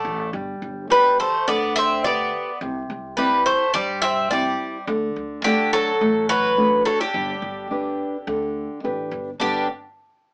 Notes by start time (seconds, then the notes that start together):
Already playing: A3 A4 D5 F#5
0.05 A1
0.33 G1 G3
0.62 G1
0.90 G3 G4 B4 D5
1.20 A3 C5
1.48 D2 D3 B3 D5
1.76 C4 E5
2.04 B3 G4 B4 D5
2.61 C2 C3
2.90 C2
3.17 G3 C4 E4 G4 B4
3.46 A3 C5
3.74 G2 G3 D5
4.02 C4 E5
4.31 G3 C4 E4 G4 D5
4.87 D2 D3
5.16 D2
5.44 D3 A3 D4 G4 F#5
5.73 F#3 A4
6.01 A1 A3
6.29 F#3 B4
6.57 A3 D4 F#4
6.85 F#3 A4
7.00 D3 G4
7.14 G1 G3
7.42 G1
7.71 D4 G4 B4
8.27 D2 D3
8.84 A1 D4 G4 B4
9.11 G1
9.40 G1 G2 D3 G3 B3 D4 G4